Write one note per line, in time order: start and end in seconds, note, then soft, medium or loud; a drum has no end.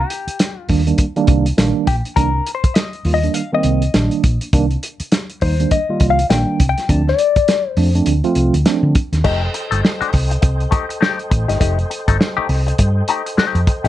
0.00 0.61 G4 medium
0.10 closed hi-hat medium
0.27 muted fingered electric bass stroke soft
0.27 closed hi-hat medium
0.39 snare loud
0.39 closed hi-hat medium
0.61 0.85 F4 medium
0.69 0.91 D#2 medium
0.69 0.81 D#3 medium
0.69 0.81 G3 medium
0.69 0.81 A#3 medium
0.69 0.81 D4 medium
0.69 kick medium
0.69 open hi-hat medium
0.87 1.04 D#3 medium
0.87 1.04 G3 medium
0.87 1.04 A#3 medium
0.87 1.04 D4 medium
0.87 closed hi-hat soft
0.98 kick loud
0.98 closed hi-hat medium
1.16 1.45 D#3 loud
1.16 1.45 G3 loud
1.16 1.45 A#3 loud
1.16 1.46 D4 loud
1.16 closed hi-hat soft
1.27 1.50 C2 medium
1.27 kick loud
1.27 closed hi-hat medium
1.46 closed hi-hat medium
1.57 1.71 A#1 medium
1.57 1.87 D#3 medium
1.57 1.87 G3 medium
1.57 1.87 A#3 medium
1.57 1.87 D4 loud
1.57 snare loud
1.57 closed hi-hat medium
1.87 2.01 A#1 medium
1.87 1.95 G4 medium
1.87 kick loud
1.87 closed hi-hat medium
2.05 2.11 A#3 soft
2.05 2.11 D4 soft
2.05 closed hi-hat soft
2.16 2.39 C2 loud
2.16 2.28 D#3 medium
2.16 2.28 G3 medium
2.16 2.29 A#3 medium
2.16 2.29 D4 loud
2.16 2.53 A#4 loud
2.16 kick medium
2.16 closed hi-hat medium
2.35 2.40 D4 soft
2.47 closed hi-hat medium
2.55 2.74 C5 medium
2.64 muted fingered electric bass stroke soft
2.64 kick medium
2.64 closed hi-hat medium
2.74 3.13 D#5 loud
2.74 snare loud
2.74 closed hi-hat medium
2.93 closed hi-hat soft
3.05 3.27 D#2 medium
3.05 3.17 D#3 medium
3.05 3.17 G3 medium
3.05 3.17 A#3 medium
3.05 3.17 F4 medium
3.05 open hi-hat medium
3.14 3.34 D#5 medium
3.23 3.40 D#3 medium
3.23 3.41 G3 medium
3.23 3.41 A#3 medium
3.23 3.41 D4 medium
3.23 closed hi-hat soft
3.34 3.54 F5 loud
3.34 closed hi-hat medium
3.53 3.82 D#3 loud
3.53 3.82 G3 medium
3.53 3.82 A#3 medium
3.53 3.82 C4 loud
3.53 4.39 D#5 medium
3.63 3.87 C2 medium
3.63 closed hi-hat medium
3.82 closed hi-hat medium
3.94 4.07 A#1 medium
3.94 4.23 D#3 medium
3.94 4.23 G3 medium
3.94 4.23 A#3 medium
3.94 4.23 D4 medium
3.94 snare loud
3.94 closed hi-hat medium
4.11 closed hi-hat soft
4.24 4.37 A#1 medium
4.24 kick medium
4.24 closed hi-hat medium
4.41 4.47 A#3 soft
4.41 4.48 D4 soft
4.41 closed hi-hat medium
4.53 4.75 C2 loud
4.53 4.65 D#3 loud
4.53 4.65 G3 medium
4.53 4.65 A#3 loud
4.53 4.65 D4 loud
4.53 kick loud
4.53 closed hi-hat medium
4.71 4.77 A#3 soft
4.71 4.77 C4 soft
4.71 closed hi-hat soft
4.83 closed hi-hat medium
5.00 muted fingered electric bass stroke medium
5.00 closed hi-hat medium
5.12 snare loud
5.12 closed hi-hat medium
5.30 closed hi-hat soft
5.41 5.64 D#2 medium
5.41 5.53 D#3 medium
5.41 5.53 G3 medium
5.41 5.54 A#3 medium
5.41 5.54 D#4 medium
5.41 5.72 C5 medium
5.41 kick medium
5.41 open hi-hat medium
5.60 5.77 D#3 medium
5.60 5.77 G3 medium
5.60 5.77 A#3 medium
5.60 5.77 D4 medium
5.60 closed hi-hat soft
5.71 6.10 D#5 medium
5.71 kick loud
5.71 closed hi-hat medium
5.89 6.18 D#3 medium
5.89 6.18 G3 medium
5.89 6.18 A#3 medium
5.89 6.18 F4 loud
6.00 6.23 C2 loud
6.00 kick medium
6.00 closed hi-hat medium
6.10 6.29 F5 medium
6.19 closed hi-hat medium
6.30 6.43 A#1 medium
6.30 6.59 D#3 medium
6.30 6.59 G3 medium
6.30 6.60 A#3 medium
6.30 6.60 D4 medium
6.30 6.68 G5 medium
6.30 snare loud
6.30 closed hi-hat medium
6.60 6.73 C2 medium
6.60 kick medium
6.60 closed hi-hat medium
6.69 6.89 G5 loud
6.77 6.83 A#3 soft
6.77 6.83 F4 soft
6.77 snare soft
6.77 closed hi-hat soft
6.89 7.11 D2 loud
6.89 7.01 F3 medium
6.89 7.01 A3 medium
6.89 7.01 C4 medium
6.89 7.01 D4 loud
6.89 7.09 A5 loud
6.89 kick medium
6.89 closed hi-hat medium
7.08 7.69 D5 medium
7.08 snare soft
7.19 closed hi-hat medium
7.36 muted fingered electric bass stroke soft
7.36 kick medium
7.36 closed hi-hat medium
7.48 snare loud
7.48 closed hi-hat loud
7.69 7.93 C5 medium
7.77 7.99 F2 loud
7.77 7.89 F3 medium
7.77 7.89 A3 medium
7.77 7.89 C4 medium
7.77 7.89 D4 medium
7.77 open hi-hat medium
7.95 8.12 F3 medium
7.95 8.12 A3 medium
7.95 8.13 C4 medium
7.95 8.13 D4 medium
7.95 closed hi-hat soft
8.06 8.20 D2 loud
8.06 closed hi-hat medium
8.24 8.53 F3 loud
8.24 8.53 A3 medium
8.24 8.54 C4 loud
8.24 8.54 F4 loud
8.24 closed hi-hat soft
8.35 8.50 C2 medium
8.35 closed hi-hat medium
8.54 8.63 D2 medium
8.54 closed hi-hat medium
8.66 8.95 F3 medium
8.66 8.95 A3 medium
8.66 8.95 C4 medium
8.66 8.95 D4 loud
8.66 snare loud
8.66 closed hi-hat medium
8.83 8.92 D3 loud
8.95 kick medium
8.95 closed hi-hat medium
9.13 9.22 D#2 medium
9.13 9.19 C4 soft
9.13 9.19 D4 soft
9.13 snare soft
9.13 closed hi-hat medium
9.24 9.47 F1 loud
9.24 9.41 A3 medium
9.24 9.41 D#4 medium
9.24 9.42 G4 medium
9.24 13.88 A4 medium
9.24 13.88 C5 medium
9.24 13.88 D#5 medium
9.24 13.88 G5 medium
9.24 kick medium
9.24 crash medium
9.54 muted clean electric guitar stroke soft
9.54 closed hi-hat medium
9.71 9.81 G1 medium
9.71 9.81 A3 medium
9.71 9.81 D#4 medium
9.71 9.80 A4 medium
9.71 closed hi-hat medium
9.83 muted clean electric guitar stroke soft
9.83 snare loud
10.01 10.11 A3 medium
10.01 10.12 D#4 medium
10.01 10.13 G4 medium
10.01 muted fingered electric bass stroke soft
10.01 closed hi-hat soft
10.13 10.36 C2 medium
10.13 muted clean electric guitar stroke soft
10.13 kick medium
10.13 open hi-hat medium
10.30 muted clean electric guitar stroke soft
10.30 closed hi-hat medium
10.42 10.65 C2 medium
10.42 muted clean electric guitar stroke soft
10.42 kick loud
10.42 closed hi-hat medium
10.60 closed hi-hat soft
10.71 10.84 A3 medium
10.71 10.85 D#4 medium
10.71 10.85 G4 medium
10.71 kick loud
10.71 closed hi-hat medium
10.89 muted clean electric guitar stroke medium
10.89 closed hi-hat medium
11.01 11.18 A3 medium
11.01 11.18 D#4 medium
11.01 11.18 G4 medium
11.01 snare loud
11.19 closed hi-hat soft
11.30 11.45 A1 medium
11.30 muted clean electric guitar stroke soft
11.30 kick medium
11.30 closed hi-hat medium
11.48 11.57 G1 medium
11.48 11.58 A3 soft
11.48 11.57 D#4 medium
11.48 11.57 G4 medium
11.48 snare soft
11.48 closed hi-hat soft
11.60 11.83 F1 loud
11.60 11.77 A3 medium
11.60 11.77 D#4 medium
11.60 11.78 G4 loud
11.60 kick loud
11.60 closed hi-hat medium
11.79 closed hi-hat soft
11.90 muted clean electric guitar stroke soft
11.90 closed hi-hat medium
12.08 12.17 G1 loud
12.08 12.17 A3 medium
12.08 12.17 D#4 medium
12.08 12.16 A4 medium
12.08 kick medium
12.08 closed hi-hat medium
12.21 snare loud
12.37 12.48 A3 medium
12.37 12.48 D#4 medium
12.37 12.48 G4 medium
12.37 muted fingered electric bass stroke medium
12.49 12.71 C2 medium
12.49 muted clean electric guitar stroke soft
12.49 open hi-hat medium
12.67 muted clean electric guitar stroke medium
12.67 closed hi-hat soft
12.78 13.01 G2 loud
12.78 muted clean electric guitar stroke soft
12.78 kick medium
12.78 closed hi-hat medium
13.08 13.21 A3 medium
13.08 13.21 D#4 medium
13.08 13.22 G4 medium
13.08 closed hi-hat medium
13.26 muted clean electric guitar stroke medium
13.26 closed hi-hat medium
13.37 13.59 A3 medium
13.37 13.60 D#4 medium
13.37 13.60 G4 medium
13.37 muted fingered electric bass stroke medium
13.37 snare loud
13.55 13.64 F2 medium
13.55 closed hi-hat soft
13.67 muted clean electric guitar stroke soft
13.67 kick medium
13.67 closed hi-hat medium
13.84 13.88 A1 loud
13.84 13.88 G4 medium
13.84 closed hi-hat medium